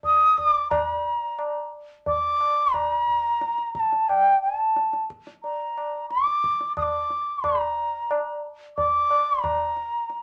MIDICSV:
0, 0, Header, 1, 3, 480
1, 0, Start_track
1, 0, Tempo, 674157
1, 511, Time_signature, 5, 2, 24, 8
1, 3868, Tempo, 665927
1, 7322, End_track
2, 0, Start_track
2, 0, Title_t, "Bansuri"
2, 0, Program_c, 0, 73
2, 39, Note_on_c, 0, 87, 99
2, 269, Note_on_c, 0, 86, 93
2, 280, Note_off_c, 0, 87, 0
2, 496, Note_off_c, 0, 86, 0
2, 500, Note_on_c, 0, 82, 78
2, 1200, Note_off_c, 0, 82, 0
2, 1481, Note_on_c, 0, 86, 96
2, 1950, Note_on_c, 0, 82, 91
2, 1960, Note_off_c, 0, 86, 0
2, 2666, Note_off_c, 0, 82, 0
2, 2670, Note_on_c, 0, 82, 74
2, 2703, Note_on_c, 0, 81, 80
2, 2711, Note_off_c, 0, 82, 0
2, 2910, Note_on_c, 0, 79, 79
2, 2921, Note_off_c, 0, 81, 0
2, 3146, Note_off_c, 0, 79, 0
2, 3150, Note_on_c, 0, 81, 71
2, 3601, Note_off_c, 0, 81, 0
2, 3869, Note_on_c, 0, 82, 78
2, 4323, Note_off_c, 0, 82, 0
2, 4349, Note_on_c, 0, 86, 96
2, 4803, Note_off_c, 0, 86, 0
2, 4835, Note_on_c, 0, 87, 82
2, 4869, Note_on_c, 0, 86, 89
2, 4876, Note_off_c, 0, 87, 0
2, 5317, Note_on_c, 0, 82, 76
2, 5328, Note_off_c, 0, 86, 0
2, 6036, Note_off_c, 0, 82, 0
2, 6278, Note_on_c, 0, 86, 97
2, 6746, Note_on_c, 0, 82, 81
2, 6756, Note_off_c, 0, 86, 0
2, 7322, Note_off_c, 0, 82, 0
2, 7322, End_track
3, 0, Start_track
3, 0, Title_t, "Tabla"
3, 22, Note_on_c, 9, 63, 71
3, 22, Note_on_c, 9, 64, 65
3, 94, Note_off_c, 9, 63, 0
3, 94, Note_off_c, 9, 64, 0
3, 269, Note_on_c, 9, 63, 74
3, 269, Note_on_c, 9, 64, 63
3, 341, Note_off_c, 9, 63, 0
3, 341, Note_off_c, 9, 64, 0
3, 507, Note_on_c, 9, 60, 89
3, 507, Note_on_c, 9, 64, 81
3, 579, Note_off_c, 9, 60, 0
3, 579, Note_off_c, 9, 64, 0
3, 987, Note_on_c, 9, 60, 75
3, 1058, Note_off_c, 9, 60, 0
3, 1469, Note_on_c, 9, 63, 72
3, 1469, Note_on_c, 9, 64, 62
3, 1540, Note_off_c, 9, 63, 0
3, 1540, Note_off_c, 9, 64, 0
3, 1712, Note_on_c, 9, 60, 56
3, 1783, Note_off_c, 9, 60, 0
3, 1951, Note_on_c, 9, 60, 75
3, 1951, Note_on_c, 9, 64, 69
3, 2022, Note_off_c, 9, 60, 0
3, 2022, Note_off_c, 9, 64, 0
3, 2193, Note_on_c, 9, 64, 47
3, 2264, Note_off_c, 9, 64, 0
3, 2431, Note_on_c, 9, 62, 73
3, 2502, Note_off_c, 9, 62, 0
3, 2551, Note_on_c, 9, 62, 56
3, 2622, Note_off_c, 9, 62, 0
3, 2669, Note_on_c, 9, 37, 58
3, 2740, Note_off_c, 9, 37, 0
3, 2795, Note_on_c, 9, 62, 55
3, 2866, Note_off_c, 9, 62, 0
3, 2915, Note_on_c, 9, 60, 70
3, 2986, Note_off_c, 9, 60, 0
3, 3392, Note_on_c, 9, 62, 73
3, 3464, Note_off_c, 9, 62, 0
3, 3512, Note_on_c, 9, 62, 57
3, 3583, Note_off_c, 9, 62, 0
3, 3632, Note_on_c, 9, 37, 54
3, 3703, Note_off_c, 9, 37, 0
3, 3752, Note_on_c, 9, 62, 56
3, 3823, Note_off_c, 9, 62, 0
3, 3873, Note_on_c, 9, 63, 72
3, 3945, Note_off_c, 9, 63, 0
3, 4115, Note_on_c, 9, 60, 57
3, 4187, Note_off_c, 9, 60, 0
3, 4353, Note_on_c, 9, 62, 76
3, 4425, Note_off_c, 9, 62, 0
3, 4472, Note_on_c, 9, 62, 57
3, 4544, Note_off_c, 9, 62, 0
3, 4594, Note_on_c, 9, 37, 55
3, 4666, Note_off_c, 9, 37, 0
3, 4714, Note_on_c, 9, 62, 55
3, 4786, Note_off_c, 9, 62, 0
3, 4831, Note_on_c, 9, 60, 73
3, 4831, Note_on_c, 9, 64, 64
3, 4903, Note_off_c, 9, 60, 0
3, 4903, Note_off_c, 9, 64, 0
3, 5072, Note_on_c, 9, 62, 53
3, 5145, Note_off_c, 9, 62, 0
3, 5314, Note_on_c, 9, 60, 89
3, 5314, Note_on_c, 9, 64, 84
3, 5386, Note_off_c, 9, 60, 0
3, 5386, Note_off_c, 9, 64, 0
3, 5795, Note_on_c, 9, 60, 76
3, 5867, Note_off_c, 9, 60, 0
3, 6278, Note_on_c, 9, 63, 75
3, 6278, Note_on_c, 9, 64, 64
3, 6350, Note_off_c, 9, 63, 0
3, 6350, Note_off_c, 9, 64, 0
3, 6515, Note_on_c, 9, 60, 57
3, 6587, Note_off_c, 9, 60, 0
3, 6755, Note_on_c, 9, 60, 74
3, 6755, Note_on_c, 9, 64, 73
3, 6827, Note_off_c, 9, 60, 0
3, 6827, Note_off_c, 9, 64, 0
3, 6993, Note_on_c, 9, 62, 54
3, 7065, Note_off_c, 9, 62, 0
3, 7231, Note_on_c, 9, 62, 67
3, 7303, Note_off_c, 9, 62, 0
3, 7322, End_track
0, 0, End_of_file